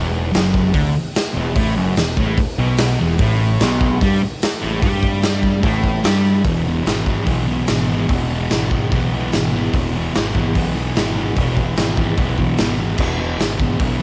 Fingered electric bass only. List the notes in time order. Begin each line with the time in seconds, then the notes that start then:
Already playing: E1
0.35 F#1
0.74 D2
0.96 muted fingered electric bass stroke
1.37 E1
1.57 A1
1.77 F#1
1.98 E1
2.17 A1
2.38 muted fingered electric bass stroke
2.58 B1
3.01 E1
3.19 A1
3.61 B1
4.02 G2
4.23 muted fingered electric bass stroke
4.64 A1
4.83 G2
5.63 A1
6.04 G2
6.45 E1
6.86 G#1
7.27 B1
7.69 G#1
8.09 E1
8.51 G#1
8.92 B1
9.34 G#1
9.73 E1
10.16 G#1
10.56 B1
10.97 G#1
11.37 E1
11.78 G#1
12.18 B1
12.59 G#1
13.00 E1
13.40 G#1
13.80 B1